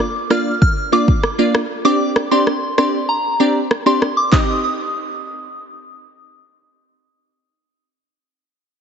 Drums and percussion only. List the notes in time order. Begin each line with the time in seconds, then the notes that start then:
0.00 cross-stick
0.31 cross-stick
0.62 kick
1.08 kick
1.23 cross-stick
1.55 cross-stick
2.16 cross-stick
2.47 cross-stick
2.78 cross-stick
3.71 cross-stick
4.02 cross-stick
4.33 kick, clap